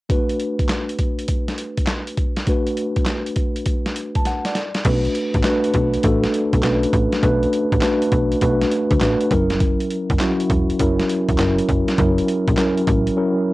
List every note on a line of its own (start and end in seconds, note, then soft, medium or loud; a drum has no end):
0.09 2.43 A3 medium
0.09 2.44 D4 medium
0.09 2.44 F#4 medium
0.09 2.44 B4 medium
0.09 kick loud
0.09 closed hi-hat medium
0.29 closed hi-hat soft
0.40 closed hi-hat medium
0.59 kick medium
0.59 closed hi-hat soft
0.69 snare loud
0.69 clap medium
0.69 closed hi-hat medium
0.89 closed hi-hat soft
0.99 kick medium
0.99 closed hi-hat medium
1.19 closed hi-hat medium
1.28 kick medium
1.28 closed hi-hat medium
1.48 snare medium
1.48 closed hi-hat soft
1.58 closed hi-hat medium
1.77 kick medium
1.77 closed hi-hat medium
1.87 snare loud
1.87 clap medium
1.87 closed hi-hat medium
2.07 closed hi-hat medium
2.17 kick medium
2.17 closed hi-hat medium
2.37 snare medium
2.37 closed hi-hat medium
2.47 4.51 A3 medium
2.47 4.51 D4 medium
2.47 4.52 F#4 medium
2.47 4.52 B4 medium
2.47 kick loud
2.47 closed hi-hat medium
2.67 closed hi-hat soft
2.77 closed hi-hat medium
2.96 kick medium
2.96 closed hi-hat soft
3.06 snare loud
3.06 clap medium
3.06 closed hi-hat medium
3.26 closed hi-hat soft
3.36 kick medium
3.36 closed hi-hat medium
3.56 closed hi-hat medium
3.66 kick medium
3.66 closed hi-hat loud
3.86 snare medium
3.86 closed hi-hat soft
3.96 closed hi-hat medium
4.15 4.25 A5 medium
4.15 kick medium
4.15 closed hi-hat medium
4.25 4.45 F#5 medium
4.25 snare soft
4.25 closed hi-hat medium
4.45 4.74 D5 medium
4.45 snare medium
4.45 closed hi-hat medium
4.55 snare medium
4.55 closed hi-hat medium
4.75 snare medium
4.75 closed hi-hat medium
4.85 5.08 B1 loud
4.85 5.42 A3 medium
4.85 4.94 C#4 medium
4.85 5.42 F#4 medium
4.85 5.42 B4 medium
4.85 kick loud
4.85 closed hi-hat medium
4.85 crash medium
4.92 5.43 D4 medium
5.05 closed hi-hat soft
5.15 closed hi-hat medium
5.34 5.42 A1 medium
5.34 kick medium
5.34 closed hi-hat soft
5.44 6.01 A3 medium
5.44 6.01 D4 medium
5.44 6.01 F#4 medium
5.44 6.02 B4 loud
5.44 snare loud
5.44 clap medium
5.44 closed hi-hat medium
5.64 closed hi-hat soft
5.74 5.97 B1 medium
5.74 kick medium
5.74 closed hi-hat medium
5.94 closed hi-hat medium
6.03 6.27 A1 medium
6.03 6.60 A3 medium
6.03 6.61 D4 medium
6.03 6.61 F#4 medium
6.03 6.61 A4 medium
6.03 kick medium
6.03 closed hi-hat medium
6.24 snare medium
6.24 closed hi-hat soft
6.34 closed hi-hat medium
6.53 6.61 B1 medium
6.53 kick medium
6.53 closed hi-hat medium
6.63 6.86 B1 medium
6.63 7.20 A3 medium
6.63 6.72 C#4 medium
6.63 7.20 F#4 medium
6.63 7.20 B4 medium
6.63 snare loud
6.63 clap medium
6.63 closed hi-hat medium
6.70 7.22 D4 medium
6.83 closed hi-hat medium
6.93 7.08 A1 medium
6.93 kick medium
6.93 closed hi-hat medium
7.12 snare medium
7.12 closed hi-hat medium
7.23 7.46 B1 loud
7.23 7.79 A3 medium
7.23 7.80 D4 medium
7.23 7.80 F#4 medium
7.23 7.80 B4 medium
7.23 kick loud
7.23 closed hi-hat medium
7.43 closed hi-hat soft
7.53 closed hi-hat medium
7.72 7.80 A1 medium
7.72 kick medium
7.72 closed hi-hat soft
7.81 8.39 A3 medium
7.81 8.39 D4 medium
7.81 8.39 F#4 medium
7.81 8.40 B4 loud
7.81 snare loud
7.81 clap medium
7.81 closed hi-hat medium
8.02 closed hi-hat medium
8.12 8.35 B1 medium
8.12 kick loud
8.12 closed hi-hat medium
8.32 closed hi-hat medium
8.41 8.65 B1 medium
8.41 8.98 A3 medium
8.41 8.99 D4 medium
8.41 8.99 F#4 medium
8.41 8.99 B4 medium
8.41 kick medium
8.41 closed hi-hat loud
8.62 snare medium
8.62 closed hi-hat medium
8.72 closed hi-hat medium
8.91 8.99 D2 medium
8.91 kick medium
8.91 closed hi-hat medium
9.01 9.16 A1 medium
9.01 9.31 A3 medium
9.01 9.31 D4 medium
9.01 9.31 F#4 medium
9.01 9.32 B4 medium
9.01 snare loud
9.01 clap medium
9.01 closed hi-hat medium
9.21 closed hi-hat medium
9.31 9.77 F#1 medium
9.31 10.16 F#3 medium
9.31 10.16 C#4 medium
9.31 10.16 E4 medium
9.31 10.16 A#4 loud
9.31 kick medium
9.31 closed hi-hat medium
9.50 snare medium
9.50 closed hi-hat medium
9.60 kick loud
9.60 closed hi-hat medium
9.80 closed hi-hat soft
9.91 closed hi-hat medium
10.10 10.18 F#1 medium
10.10 kick loud
10.10 closed hi-hat soft
10.19 10.77 F#3 medium
10.19 10.77 C#4 medium
10.19 10.77 E4 medium
10.19 10.77 F#4 loud
10.19 snare loud
10.19 clap medium
10.19 closed hi-hat medium
10.40 closed hi-hat soft
10.50 10.73 E1 medium
10.50 kick loud
10.50 closed hi-hat medium
10.70 closed hi-hat medium
10.79 11.03 F#1 medium
10.79 11.36 F#3 medium
10.79 11.36 C#4 medium
10.79 11.36 E4 medium
10.79 11.37 A#4 medium
10.79 kick loud
10.79 closed hi-hat loud
10.99 snare medium
10.99 closed hi-hat soft
11.09 closed hi-hat medium
11.29 11.36 E1 medium
11.29 kick medium
11.29 closed hi-hat medium
11.38 11.62 F#1 loud
11.38 11.95 F#3 medium
11.38 11.96 C#4 medium
11.38 11.96 E4 medium
11.38 11.96 A#4 medium
11.38 snare loud
11.38 clap medium
11.38 closed hi-hat medium
11.58 closed hi-hat medium
11.69 11.84 F#1 medium
11.69 kick medium
11.69 closed hi-hat medium
11.88 snare medium
11.88 closed hi-hat soft
11.98 12.21 F#1 loud
11.98 12.55 F#3 medium
11.98 12.55 C#4 medium
11.98 12.55 E4 medium
11.98 12.55 A#4 medium
11.98 kick loud
11.98 closed hi-hat medium
12.18 closed hi-hat medium
12.28 closed hi-hat medium
12.48 12.55 A#1 medium
12.48 kick medium
12.48 closed hi-hat soft
12.57 13.14 F#3 medium
12.57 13.14 C#4 medium
12.57 13.14 E4 medium
12.57 13.15 A#4 loud
12.57 snare loud
12.57 clap medium
12.57 closed hi-hat medium
12.77 closed hi-hat soft
12.87 13.10 A1 loud
12.87 kick medium
12.87 closed hi-hat medium
13.07 closed hi-hat medium
13.17 13.54 F#3 medium
13.17 13.54 C#4 medium
13.17 13.54 E4 medium
13.17 13.54 A#4 medium